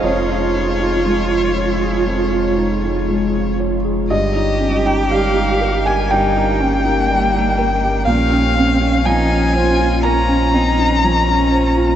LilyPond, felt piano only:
\new Staff \with { instrumentName = "Felt piano" } { \time 4/4 \key des \lydian \tempo 4 = 61 << { des''2.~ des''8 r8 | ees''8. g''16 f''8. aes''16 g''2 | f''4 aes''4 bes''2 | } \\ { <f, aes'>16 f'16 ees'16 f'16 aes16 f'16 des''16 aes'16 f,16 f'16 ees'16 f'16 aes16 f'16 des''16 aes'16 | g,16 ees'16 des'16 ees'16 g16 ees'16 bes'16 g'16 g,16 ees'16 des'16 ees'16 g16 ees'16 bes'16 g'16 | bes,16 des'16 c'16 des'16 f16 des'16 c''16 f'16 bes16 des'16 c'16 des'16 f16 des'16 c''16 f'16 | } >> }